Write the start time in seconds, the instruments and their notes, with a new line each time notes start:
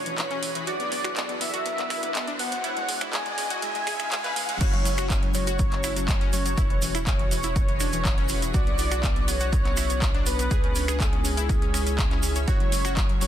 Already playing: sub bass E1, ambient pad E3 E4 F#4 G#4 B4, analog synth lead C#5, riser
0.06 synth pluck E3, closed hi-hat
0.18 synth pluck E3, clap, closed hi-hat
0.31 synth pluck C#4, closed hi-hat
0.43 synth pluck E3, open hi-hat
0.55 synth pluck E3, closed hi-hat
0.67 sub bass B1, ambient pad B3 D4, synth pluck F#4, analog synth lead D5, closed hi-hat
0.80 synth pluck B3, closed hi-hat
0.92 synth pluck B3, open hi-hat
1.04 synth pluck F#4, finger snap, closed hi-hat
1.16 synth pluck B3, clap, closed hi-hat
1.29 synth pluck B3, closed hi-hat
1.41 synth pluck B3, analog synth lead E5, open hi-hat
1.54 synth pluck F#4, closed hi-hat
1.66 synth pluck B3, closed hi-hat
1.78 synth pluck B3, clap, closed hi-hat
1.90 synth pluck E4, finger snap, open hi-hat
2.03 synth pluck B3, closed hi-hat
2.15 synth pluck B3, clap, closed hi-hat
2.27 synth pluck D4, closed hi-hat
2.39 synth pluck B3, analog synth lead F#5, open hi-hat
2.52 synth pluck B3, closed hi-hat
2.64 sub bass C#2, ambient pad G#3 C#4 E4, synth pluck E4, closed hi-hat
2.77 synth pluck G#3, closed hi-hat
2.89 synth pluck G#3, open hi-hat
3.01 synth pluck E4, finger snap, closed hi-hat
3.13 synth pluck G#3, analog synth lead G#5, clap, closed hi-hat
3.26 synth pluck G#3, closed hi-hat
3.38 synth pluck G#3, open hi-hat
3.50 synth pluck F#4, closed hi-hat
3.62 synth pluck G#3, closed hi-hat
3.75 synth pluck G#3, closed hi-hat
3.87 synth pluck G#4, finger snap, open hi-hat
4.00 synth pluck G#3, finger snap, closed hi-hat
4.12 synth pluck G#3, clap, closed hi-hat
4.24 synth pluck B4, clap, closed hi-hat
4.36 synth pluck G#3, open hi-hat
4.49 synth pluck G#3, closed hi-hat
4.61 sub bass F#1, ambient pad A3 C#4 F#4, synth pluck F#4, analog synth lead C#5, kick, closed hi-hat, crash, shaker
4.73 synth pluck F#3, closed hi-hat
4.85 synth pluck F#3, open hi-hat, shaker
4.97 synth pluck F#4, finger snap, closed hi-hat, shaker
5.10 synth pluck F#3, kick, clap, closed hi-hat, shaker
5.23 synth pluck F#3, closed hi-hat
5.34 synth pluck F#3, analog synth lead C#5, open hi-hat, shaker
5.47 synth pluck F#4, closed hi-hat, shaker
5.59 synth pluck F#3, kick, closed hi-hat, shaker
5.72 synth pluck F#3, clap, closed hi-hat
5.84 synth pluck E4, finger snap, open hi-hat, shaker
5.96 synth pluck F#3, closed hi-hat, shaker
6.08 synth pluck F#3, kick, clap, closed hi-hat, shaker
6.21 synth pluck C#4, closed hi-hat
6.33 synth pluck F#3, analog synth lead C#5, open hi-hat, shaker
6.46 synth pluck F#3, closed hi-hat, shaker
6.58 sub bass E1, ambient pad E3 E4 F#4 G#4 B4, synth pluck E4, kick, closed hi-hat, shaker
6.70 synth pluck E3, closed hi-hat
6.82 synth pluck E3, open hi-hat, shaker
6.95 synth pluck E4, finger snap, closed hi-hat, shaker
7.07 synth pluck E3, analog synth lead C#5, kick, clap, closed hi-hat, shaker
7.19 synth pluck E3, closed hi-hat
7.31 synth pluck E3, open hi-hat, shaker
7.43 synth pluck E4, closed hi-hat, shaker
7.56 synth pluck E3, kick, closed hi-hat, shaker
7.68 synth pluck E3, closed hi-hat
7.80 synth pluck D4, finger snap, open hi-hat, shaker
7.93 synth pluck E3, closed hi-hat, shaker
8.05 kick, clap, closed hi-hat, shaker
8.18 synth pluck C#4, closed hi-hat
8.29 synth pluck E3, open hi-hat, shaker
8.42 synth pluck E3, closed hi-hat, shaker
8.54 sub bass B1, ambient pad B3 D4, synth pluck F#4, analog synth lead D5, kick, closed hi-hat, shaker
8.67 synth pluck B3, closed hi-hat
8.79 synth pluck B3, open hi-hat, shaker
8.91 synth pluck F#4, finger snap, closed hi-hat, shaker
9.03 synth pluck B3, kick, clap, closed hi-hat, shaker
9.16 synth pluck B3, closed hi-hat
9.28 synth pluck B3, analog synth lead C#5, open hi-hat, shaker
9.40 synth pluck F#4, closed hi-hat, shaker
9.53 synth pluck B3, kick, closed hi-hat, shaker
9.65 synth pluck B3, clap, closed hi-hat
9.77 synth pluck E4, finger snap, open hi-hat, shaker
9.90 synth pluck B3, closed hi-hat, shaker
10.02 synth pluck B3, kick, clap, closed hi-hat, shaker
10.14 synth pluck D4, closed hi-hat
10.26 synth pluck B3, analog synth lead B4, open hi-hat, shaker
10.39 synth pluck B3, closed hi-hat, shaker
10.51 sub bass C#2, ambient pad G#3 C#4 E4, synth pluck G#4, kick, closed hi-hat, shaker
10.64 synth pluck C#4, closed hi-hat
10.76 synth pluck C#4, open hi-hat, shaker
10.88 synth pluck G#4, finger snap, closed hi-hat, shaker
11.00 synth pluck C#4, analog synth lead G#4, kick, clap, closed hi-hat, shaker
11.13 synth pluck C#4, closed hi-hat
11.25 synth pluck C#4, open hi-hat, shaker
11.37 synth pluck E4, closed hi-hat, shaker
11.49 synth pluck C#4, kick, closed hi-hat, shaker
11.62 synth pluck C#4, closed hi-hat
11.74 synth pluck C#4, finger snap, open hi-hat, shaker
11.86 synth pluck C#4, closed hi-hat, shaker
11.98 synth pluck C#4, kick, clap, closed hi-hat, shaker
12.11 synth pluck C#4, clap, closed hi-hat
12.23 synth pluck C#4, open hi-hat, shaker
12.35 synth pluck C#4, closed hi-hat, shaker
12.48 sub bass F#1, ambient pad A3 F#4, synth pluck F#4, analog synth lead C#5, kick, closed hi-hat, shaker
12.60 synth pluck F#3, closed hi-hat
12.72 synth pluck F#3, open hi-hat, shaker
12.85 synth pluck F#4, finger snap, closed hi-hat, shaker
12.97 synth pluck F#3, kick, clap, closed hi-hat, shaker
13.09 synth pluck F#3, closed hi-hat
13.21 synth pluck F#3, analog synth lead C#5, open hi-hat, shaker